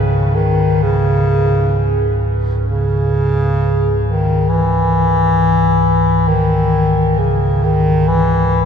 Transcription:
Already playing: C#2 G#2 C#3 C#4 G#4 B4 D#5
0.35 D#3
0.83 C#3
2.65 C#3
4.05 D#3
4.47 C#2 G#2 E3
6.28 D#3
7.18 C#3
7.64 D#3
8.09 E3

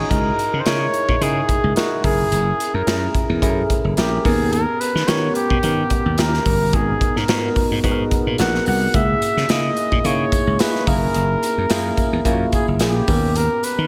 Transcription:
Already playing: C#4 D#4 F#4 G#4
0.10 C#2 D#4 E4 G#4 A#4, kick, closed hi-hat
0.39 closed hi-hat
0.53 C#3
0.60 C5
0.66 C#3 D#4 E4 G#4 A#4 C#5, snare, closed hi-hat
0.94 closed hi-hat
1.08 A#2, kick
1.21 C#3 D#4 E4 G#4 A#4, closed hi-hat
1.49 kick, closed hi-hat
1.64 C#2
1.76 D#4 E4 F#4 G#4 A#4, snare, closed hi-hat
2.03 F#1 C#4 E4 G#4 A#4, kick, open hi-hat
2.32 F#1, closed hi-hat
2.60 closed hi-hat
2.74 F#2 A#4
2.87 F#2 C#4 E4 G#4 A#4, snare, closed hi-hat
3.15 kick, closed hi-hat
3.29 E2
3.42 F#2 C#4 E4 G#4 A4, kick, closed hi-hat
3.50 A#4
3.70 kick, closed hi-hat
3.84 F#1
3.97 A#1 C#4 E4 G4 G#4 A#4, snare, closed hi-hat
4.24 D#2 B3 C#4 G4 G#4 A#4, kick, open hi-hat
4.52 A#4, closed hi-hat
4.80 B4, closed hi-hat
4.95 D#3, snare
5.07 D#3 B3 C#4 G4 A#4 C#5, snare, closed hi-hat
5.35 G4, closed hi-hat
5.50 B2, kick
5.63 D#3 B3 C#4 G4 A#4, closed hi-hat
5.90 kick, closed hi-hat
6.06 D#2
6.18 D#2 C#4 E4 G4 A#4, snare, closed hi-hat
6.34 snare
6.45 G1, kick, open hi-hat
6.73 G#1 B3 D#4 F#4 G#4, kick, closed hi-hat
6.81 A#4
7.01 kick, closed hi-hat
7.16 G#2 A#4, snare
7.28 G#2 B3 D#4 F#4 A#4, snare, closed hi-hat
7.56 kick, open hi-hat
7.71 G#2
7.84 G#2 B3 D#4 F#4 G#4, kick, closed hi-hat
7.91 A#4
8.11 kick, closed hi-hat
8.27 A#2
8.38 A#1 B3 D#4 F#4 A#4 F#5, snare, closed hi-hat
8.55 snare
8.66 C2 F#5, open hi-hat
8.94 C#2 A#3 C#4 E4 G#4 E5, kick, closed hi-hat
9.22 closed hi-hat, tambourine
9.37 C#3, snare
9.49 C#3 A#3 D#4 E4 G#4 D#5, snare, closed hi-hat, tambourine
9.77 closed hi-hat, tambourine
9.92 A#2, kick
10.04 C#3 A#3 D#4 E4 G#4 C#5, closed hi-hat, tambourine
10.32 kick, closed hi-hat, tambourine
10.47 C#2
10.59 A#3 D#4 E4 G#4 B4, snare, closed hi-hat, tambourine
10.75 snare
10.87 F#1 A#3 C#4 E4 G#4 A#4, kick, open hi-hat, tambourine
11.14 F#1, closed hi-hat
11.43 closed hi-hat, tambourine
11.58 F#2
11.70 F#2 A#3 C#4 E4 G#4, snare, closed hi-hat, tambourine
11.97 kick, closed hi-hat, tambourine
12.13 E2
12.25 F#2 A#3 C#4 E4 F4, kick, closed hi-hat, tambourine
12.33 F#4
12.52 G#4, kick, closed hi-hat, tambourine
12.68 F#1
12.79 A#1 A#3 C#4 E4 G4 G#4, snare, closed hi-hat, tambourine
13.08 D#2 B3 C#4 G4 A#4, kick, open hi-hat, tambourine
13.36 A#4, closed hi-hat
13.63 B4, closed hi-hat, tambourine
13.78 D#3

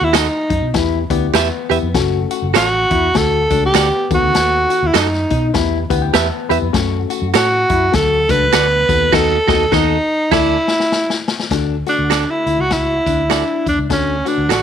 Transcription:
Already playing: B3 D#4 A4
0.01 D#2 E4
0.13 D#4 F#4 A4 D#5, snare, clap, closed hi-hat, tambourine
0.50 F#2 D#4, kick, closed hi-hat
0.62 B2
0.74 E2 E3 B3 E4 G4 B4, kick, snare, closed hi-hat, tambourine
1.10 D2 B3 E4 G4 D5, kick, closed hi-hat, tambourine
1.34 E2 B3 G4 B4 E5, snare, clap, closed hi-hat, tambourine
1.70 E2 B3 E4 G4 B4 E5, closed hi-hat, tambourine
1.83 F2
1.94 F#1 A3 C#4 F#4 A4, kick, snare, closed hi-hat, tambourine
2.31 F#4, closed hi-hat, tambourine
2.42 F#1
2.54 A1 F#4 A4 C#5, snare, clap, closed hi-hat, tambourine
2.90 E2 E4, kick, closed hi-hat, tambourine
3.14 D2 A3 D4 F#4 A4, kick, snare, closed hi-hat, tambourine
3.50 C#2 A3 D4 F#4 A4, kick, closed hi-hat, tambourine
3.66 G4
3.74 D2 B3 F#4 A4 D5, snare, clap, closed hi-hat, tambourine
4.11 D#2 D#3 B3 D#4 F#4 A4, kick, closed hi-hat, tambourine
4.22 D2
4.34 D#2 B3, snare, closed hi-hat, tambourine
4.70 F#4, closed hi-hat, tambourine
4.83 D#2
4.87 E4
4.94 F#2 F#4 A4 D#5, snare, clap, closed hi-hat, tambourine
4.98 D#4
5.13 snare
5.30 B2 D#4, kick, closed hi-hat, tambourine
5.54 E2 E3 B3 E4 G4 B4, kick, snare, closed hi-hat, tambourine
5.90 D2 B3 E4 G4 B4 F#5, kick, closed hi-hat, tambourine
6.02 G5
6.13 E2 B3 G4 B4 E5 A5, snare, clap, closed hi-hat, tambourine
6.49 E2 B3 E4 G4 B4 E5 B5, closed hi-hat, tambourine
6.62 F2
6.73 F#2 A3 C#4 F#4 A4, kick, snare, closed hi-hat, tambourine
7.10 F#4, closed hi-hat, tambourine
7.22 F#2
7.34 A2 F#4 A4 C#5, snare, clap, closed hi-hat, tambourine
7.69 F#2 E4, kick, closed hi-hat
7.92 D2 F#3 A3 D4 F#4 A4, kick, snare, closed hi-hat
8.29 C#2 A3 D4 F#4 A4 B4, kick, closed hi-hat, tambourine
8.53 D2 B3 F#4 A4 D5, snare, clap, closed hi-hat, tambourine
8.89 D#2 D#3 B3 D#4 F#4 A4, kick, closed hi-hat, tambourine
9.12 D#2 D#3 B3 D#4 F#4 A4 D#5, kick, snare, crash
9.48 D#2 D#3 B3 D#4 F#4 A4 D#5, kick, snare
9.72 D#2 D#3 B3 D#4 F#4 A4 D#5, kick, snare
10.31 D2 D3 A3 D4 E4 A4 D5, kick, snare, crash
10.68 snare
10.80 snare
10.92 snare
11.10 snare
11.28 snare
11.39 snare
11.51 D2 D3 A3 D4 F#4 A4, kick, snare, closed hi-hat, tambourine
11.86 A3 D4 F#4 A4, closed hi-hat, tambourine
11.99 D2
12.10 F#4 A4 D5, snare, clap, closed hi-hat, tambourine
12.31 E4
12.46 D2 E4, closed hi-hat, tambourine
12.58 C#2 F#4
12.70 E4 F#4, kick, snare, closed hi-hat
13.06 D2 D4, kick, closed hi-hat, tambourine
13.29 D4 F#4 A4 D5, snare, clap, closed hi-hat, tambourine
13.66 E2 D4, kick, closed hi-hat, tambourine
13.78 C#2
13.90 D2 D3 A3 C#4 D4 F#4 A4, kick, snare, closed hi-hat, tambourine
14.25 A3 D4 F#4 B4, closed hi-hat, tambourine
14.37 D2
14.49 A1 F#4 A4 D5, snare, clap, closed hi-hat, tambourine

